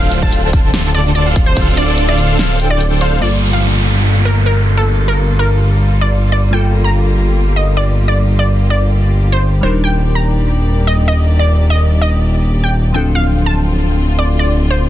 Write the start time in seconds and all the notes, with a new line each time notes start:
Already playing: D1 D3 C4 D4 F4 A4 C5 F5
0.12 closed hi-hat
0.22 D3 D4 A4 C5 F5 A5, kick
0.32 closed hi-hat
0.43 D3 D4 A4 C5 A5
0.53 kick, closed hi-hat
0.74 snare, closed hi-hat
0.94 D5, closed hi-hat
1.15 D5, closed hi-hat
1.26 D3 D4 A4 C5 F5
1.36 kick, closed hi-hat
1.46 C5
1.56 D3 D4 A4 C5 F5, kick, closed hi-hat, ride
1.77 D5, closed hi-hat
1.88 D3 D4 A4 C5 D5
1.98 closed hi-hat
2.08 D3 D4 A4 C5 D5 F5
2.18 closed hi-hat
2.39 D3 D4 A4 C5 F5, snare, closed hi-hat
2.60 D3 D4 A4 C5 G5, closed hi-hat
2.70 D5
2.80 closed hi-hat
3.01 D3 D4 A4 C5 F5, closed hi-hat
3.20 G1 G3 A#3 F4 A4 D5, downlifter
3.53 F5
4.25 A#4
4.46 A#4
4.77 A4
5.08 A#4
5.39 A#4
6.01 D5
6.32 D5
6.51 G3 A#3 F4 G4 A4 G5
6.84 A#5
7.56 D#5
7.77 D5
8.08 D5
8.39 D5
8.70 D5
9.32 C5
9.61 D#1 D#3 G3 D4 D#4 C5 D5
9.65 A#4
9.84 G5
10.15 A#5
10.87 D#5
11.08 D#5
11.39 D5
11.70 D#5
12.02 D#5
12.64 G5
12.93 D1 D3 F3 C4 D4 F4 A4 G5
13.15 F5
13.46 A5
14.19 D5
14.39 D5
14.71 C5